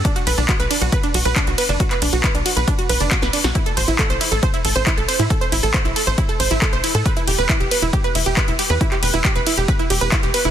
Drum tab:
RD |--x---x---x---x-|--x---x---x---x-|--x---x---x---x-|--x---x---x---x-|
HH |xxoxxxoxxxoxxxox|xxoxxxoxxxoxxxo-|xxoxxxoxxxoxxxox|xxoxxxoxxxoxxxox|
CP |----x-------x---|-x--x-------x---|----x-------x---|----x-------x---|
SD |----------------|------------oo-o|----------------|----------------|
BD |o---o---o---o---|o---o---o---o---|o---o---o---o---|o---o---o---o---|

RD |--x---x---x---x-|--x---x---x---x-|
HH |xxoxxxoxxxoxxxox|xxoxxxoxxxoxxxox|
CP |----x-------x---|-x--x-------x---|
SD |----------------|----------------|
BD |o---o---o---o---|o---o---o---o---|